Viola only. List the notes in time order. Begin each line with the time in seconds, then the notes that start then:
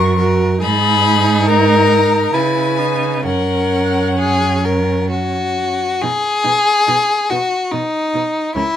Already playing: F#4
0.20 F#4
0.61 D#4
2.33 E4
2.79 D#4
3.25 C#4
6.03 D#4
6.44 D#4
6.87 D#4
7.30 D#4
7.72 D#4
8.15 D#4
8.55 C#4